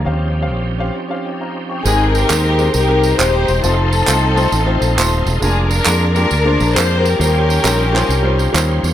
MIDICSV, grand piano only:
0, 0, Header, 1, 2, 480
1, 0, Start_track
1, 0, Key_signature, -4, "major"
1, 0, Tempo, 446429
1, 57, Time_signature, 4, 2, 24, 8
1, 9606, End_track
2, 0, Start_track
2, 0, Title_t, "Grand piano"
2, 0, Program_c, 0, 0
2, 0, Note_on_c, 0, 82, 57
2, 48, Note_on_c, 0, 61, 72
2, 54, Note_on_c, 0, 51, 66
2, 54, Note_on_c, 0, 67, 57
2, 59, Note_on_c, 0, 72, 65
2, 67, Note_on_c, 0, 77, 73
2, 349, Note_off_c, 0, 82, 0
2, 354, Note_off_c, 0, 61, 0
2, 357, Note_off_c, 0, 67, 0
2, 359, Note_off_c, 0, 72, 0
2, 364, Note_off_c, 0, 77, 0
2, 439, Note_on_c, 0, 61, 65
2, 446, Note_on_c, 0, 67, 62
2, 455, Note_on_c, 0, 72, 61
2, 457, Note_on_c, 0, 77, 79
2, 675, Note_off_c, 0, 61, 0
2, 679, Note_off_c, 0, 67, 0
2, 683, Note_off_c, 0, 72, 0
2, 685, Note_off_c, 0, 77, 0
2, 811, Note_off_c, 0, 51, 0
2, 843, Note_on_c, 0, 61, 75
2, 849, Note_on_c, 0, 67, 67
2, 860, Note_on_c, 0, 72, 71
2, 863, Note_on_c, 0, 77, 81
2, 1010, Note_off_c, 0, 61, 0
2, 1013, Note_off_c, 0, 67, 0
2, 1018, Note_off_c, 0, 72, 0
2, 1020, Note_off_c, 0, 77, 0
2, 1165, Note_on_c, 0, 61, 74
2, 1176, Note_on_c, 0, 67, 64
2, 1183, Note_on_c, 0, 72, 62
2, 1191, Note_on_c, 0, 77, 75
2, 1339, Note_off_c, 0, 72, 0
2, 1342, Note_on_c, 0, 79, 52
2, 1343, Note_off_c, 0, 77, 0
2, 1352, Note_on_c, 0, 73, 45
2, 1406, Note_off_c, 0, 61, 0
2, 1412, Note_off_c, 0, 67, 0
2, 1499, Note_off_c, 0, 79, 0
2, 1504, Note_off_c, 0, 73, 0
2, 1515, Note_on_c, 0, 82, 62
2, 1520, Note_on_c, 0, 77, 48
2, 1809, Note_off_c, 0, 82, 0
2, 1812, Note_off_c, 0, 77, 0
2, 1822, Note_on_c, 0, 85, 53
2, 1833, Note_on_c, 0, 79, 51
2, 1982, Note_on_c, 0, 56, 75
2, 1989, Note_on_c, 0, 60, 61
2, 1994, Note_on_c, 0, 44, 61
2, 1995, Note_on_c, 0, 63, 64
2, 2002, Note_on_c, 0, 67, 69
2, 2007, Note_on_c, 0, 70, 83
2, 2278, Note_off_c, 0, 85, 0
2, 2284, Note_off_c, 0, 79, 0
2, 2345, Note_off_c, 0, 56, 0
2, 2348, Note_off_c, 0, 60, 0
2, 2351, Note_off_c, 0, 63, 0
2, 2355, Note_off_c, 0, 67, 0
2, 2357, Note_off_c, 0, 70, 0
2, 2459, Note_on_c, 0, 60, 69
2, 2460, Note_on_c, 0, 56, 72
2, 2472, Note_on_c, 0, 63, 75
2, 2476, Note_on_c, 0, 67, 69
2, 2480, Note_on_c, 0, 72, 80
2, 2664, Note_off_c, 0, 56, 0
2, 2664, Note_off_c, 0, 60, 0
2, 2670, Note_off_c, 0, 63, 0
2, 2672, Note_off_c, 0, 67, 0
2, 2674, Note_off_c, 0, 72, 0
2, 2742, Note_off_c, 0, 44, 0
2, 2773, Note_on_c, 0, 56, 81
2, 2780, Note_on_c, 0, 60, 68
2, 2781, Note_on_c, 0, 63, 73
2, 2790, Note_on_c, 0, 67, 68
2, 2792, Note_on_c, 0, 72, 78
2, 2937, Note_off_c, 0, 56, 0
2, 2941, Note_off_c, 0, 60, 0
2, 2941, Note_off_c, 0, 63, 0
2, 2946, Note_off_c, 0, 67, 0
2, 2947, Note_off_c, 0, 72, 0
2, 3084, Note_on_c, 0, 56, 67
2, 3088, Note_on_c, 0, 60, 65
2, 3093, Note_on_c, 0, 63, 71
2, 3097, Note_on_c, 0, 67, 62
2, 3101, Note_on_c, 0, 70, 84
2, 3328, Note_off_c, 0, 56, 0
2, 3330, Note_off_c, 0, 60, 0
2, 3333, Note_off_c, 0, 63, 0
2, 3334, Note_off_c, 0, 67, 0
2, 3336, Note_off_c, 0, 70, 0
2, 3411, Note_on_c, 0, 56, 73
2, 3417, Note_on_c, 0, 60, 68
2, 3420, Note_on_c, 0, 63, 69
2, 3426, Note_on_c, 0, 67, 75
2, 3431, Note_on_c, 0, 72, 83
2, 3779, Note_off_c, 0, 56, 0
2, 3782, Note_off_c, 0, 60, 0
2, 3784, Note_off_c, 0, 63, 0
2, 3787, Note_off_c, 0, 67, 0
2, 3789, Note_off_c, 0, 72, 0
2, 3889, Note_on_c, 0, 57, 76
2, 3890, Note_on_c, 0, 60, 61
2, 3901, Note_on_c, 0, 63, 66
2, 3903, Note_on_c, 0, 65, 69
2, 3908, Note_on_c, 0, 72, 86
2, 4258, Note_off_c, 0, 57, 0
2, 4259, Note_off_c, 0, 60, 0
2, 4264, Note_off_c, 0, 63, 0
2, 4265, Note_off_c, 0, 65, 0
2, 4268, Note_off_c, 0, 72, 0
2, 4362, Note_on_c, 0, 57, 75
2, 4371, Note_on_c, 0, 60, 63
2, 4375, Note_on_c, 0, 63, 79
2, 4382, Note_on_c, 0, 65, 72
2, 4390, Note_on_c, 0, 72, 93
2, 4575, Note_off_c, 0, 57, 0
2, 4579, Note_off_c, 0, 60, 0
2, 4581, Note_off_c, 0, 63, 0
2, 4585, Note_off_c, 0, 65, 0
2, 4589, Note_off_c, 0, 72, 0
2, 4680, Note_on_c, 0, 57, 92
2, 4687, Note_on_c, 0, 60, 78
2, 4693, Note_on_c, 0, 63, 82
2, 4695, Note_on_c, 0, 65, 83
2, 4701, Note_on_c, 0, 72, 103
2, 4850, Note_off_c, 0, 57, 0
2, 4854, Note_off_c, 0, 60, 0
2, 4857, Note_off_c, 0, 63, 0
2, 4858, Note_off_c, 0, 65, 0
2, 4861, Note_off_c, 0, 72, 0
2, 4998, Note_on_c, 0, 57, 89
2, 5004, Note_on_c, 0, 60, 84
2, 5009, Note_on_c, 0, 63, 78
2, 5014, Note_on_c, 0, 65, 86
2, 5016, Note_on_c, 0, 72, 102
2, 5244, Note_off_c, 0, 57, 0
2, 5247, Note_off_c, 0, 60, 0
2, 5249, Note_off_c, 0, 63, 0
2, 5252, Note_off_c, 0, 65, 0
2, 5253, Note_off_c, 0, 72, 0
2, 5331, Note_on_c, 0, 57, 96
2, 5335, Note_on_c, 0, 60, 78
2, 5344, Note_on_c, 0, 63, 79
2, 5349, Note_on_c, 0, 65, 88
2, 5351, Note_on_c, 0, 72, 107
2, 5697, Note_off_c, 0, 57, 0
2, 5700, Note_off_c, 0, 60, 0
2, 5704, Note_off_c, 0, 63, 0
2, 5707, Note_off_c, 0, 65, 0
2, 5708, Note_off_c, 0, 72, 0
2, 5808, Note_on_c, 0, 56, 78
2, 5818, Note_on_c, 0, 58, 71
2, 5824, Note_on_c, 0, 65, 69
2, 5826, Note_on_c, 0, 62, 69
2, 5828, Note_on_c, 0, 70, 80
2, 6176, Note_off_c, 0, 56, 0
2, 6181, Note_off_c, 0, 58, 0
2, 6184, Note_off_c, 0, 62, 0
2, 6184, Note_off_c, 0, 65, 0
2, 6186, Note_off_c, 0, 70, 0
2, 6287, Note_on_c, 0, 56, 76
2, 6293, Note_on_c, 0, 58, 72
2, 6297, Note_on_c, 0, 62, 67
2, 6301, Note_on_c, 0, 65, 71
2, 6306, Note_on_c, 0, 68, 89
2, 6496, Note_off_c, 0, 56, 0
2, 6499, Note_off_c, 0, 58, 0
2, 6501, Note_off_c, 0, 62, 0
2, 6503, Note_off_c, 0, 65, 0
2, 6505, Note_off_c, 0, 68, 0
2, 6603, Note_on_c, 0, 56, 75
2, 6609, Note_on_c, 0, 58, 75
2, 6612, Note_on_c, 0, 62, 71
2, 6617, Note_on_c, 0, 65, 68
2, 6627, Note_on_c, 0, 67, 84
2, 6770, Note_off_c, 0, 56, 0
2, 6773, Note_off_c, 0, 58, 0
2, 6774, Note_off_c, 0, 62, 0
2, 6777, Note_off_c, 0, 65, 0
2, 6781, Note_off_c, 0, 67, 0
2, 6922, Note_on_c, 0, 56, 72
2, 6924, Note_on_c, 0, 58, 70
2, 6931, Note_on_c, 0, 62, 67
2, 6940, Note_on_c, 0, 65, 70
2, 6942, Note_on_c, 0, 72, 77
2, 7163, Note_off_c, 0, 56, 0
2, 7164, Note_off_c, 0, 58, 0
2, 7168, Note_off_c, 0, 62, 0
2, 7173, Note_off_c, 0, 65, 0
2, 7173, Note_off_c, 0, 72, 0
2, 7248, Note_on_c, 0, 56, 78
2, 7256, Note_on_c, 0, 58, 67
2, 7261, Note_on_c, 0, 62, 68
2, 7261, Note_on_c, 0, 65, 64
2, 7273, Note_on_c, 0, 70, 81
2, 7614, Note_off_c, 0, 56, 0
2, 7618, Note_off_c, 0, 58, 0
2, 7620, Note_off_c, 0, 62, 0
2, 7620, Note_off_c, 0, 65, 0
2, 7626, Note_off_c, 0, 70, 0
2, 7730, Note_on_c, 0, 55, 72
2, 7733, Note_on_c, 0, 61, 70
2, 7738, Note_on_c, 0, 63, 67
2, 7745, Note_on_c, 0, 65, 73
2, 7746, Note_on_c, 0, 51, 58
2, 7750, Note_on_c, 0, 72, 84
2, 8094, Note_off_c, 0, 55, 0
2, 8095, Note_off_c, 0, 61, 0
2, 8098, Note_off_c, 0, 63, 0
2, 8102, Note_off_c, 0, 65, 0
2, 8104, Note_off_c, 0, 72, 0
2, 8222, Note_on_c, 0, 55, 89
2, 8223, Note_on_c, 0, 61, 87
2, 8232, Note_on_c, 0, 63, 90
2, 8236, Note_on_c, 0, 65, 82
2, 8239, Note_on_c, 0, 67, 98
2, 8420, Note_off_c, 0, 55, 0
2, 8421, Note_off_c, 0, 61, 0
2, 8425, Note_off_c, 0, 63, 0
2, 8427, Note_off_c, 0, 65, 0
2, 8429, Note_off_c, 0, 67, 0
2, 8492, Note_off_c, 0, 51, 0
2, 8525, Note_on_c, 0, 55, 81
2, 8530, Note_on_c, 0, 61, 88
2, 8534, Note_on_c, 0, 63, 82
2, 8539, Note_on_c, 0, 65, 89
2, 8542, Note_on_c, 0, 72, 96
2, 8688, Note_off_c, 0, 55, 0
2, 8690, Note_off_c, 0, 61, 0
2, 8692, Note_off_c, 0, 63, 0
2, 8695, Note_off_c, 0, 65, 0
2, 8696, Note_off_c, 0, 72, 0
2, 8847, Note_on_c, 0, 55, 87
2, 8855, Note_on_c, 0, 61, 78
2, 8861, Note_on_c, 0, 63, 74
2, 8861, Note_on_c, 0, 65, 79
2, 8869, Note_on_c, 0, 72, 101
2, 9083, Note_off_c, 0, 55, 0
2, 9087, Note_off_c, 0, 61, 0
2, 9090, Note_off_c, 0, 63, 0
2, 9090, Note_off_c, 0, 65, 0
2, 9094, Note_off_c, 0, 72, 0
2, 9166, Note_on_c, 0, 55, 92
2, 9174, Note_on_c, 0, 61, 81
2, 9178, Note_on_c, 0, 63, 87
2, 9179, Note_on_c, 0, 65, 76
2, 9187, Note_on_c, 0, 72, 98
2, 9529, Note_off_c, 0, 55, 0
2, 9533, Note_off_c, 0, 61, 0
2, 9535, Note_off_c, 0, 63, 0
2, 9536, Note_off_c, 0, 65, 0
2, 9540, Note_off_c, 0, 72, 0
2, 9606, End_track
0, 0, End_of_file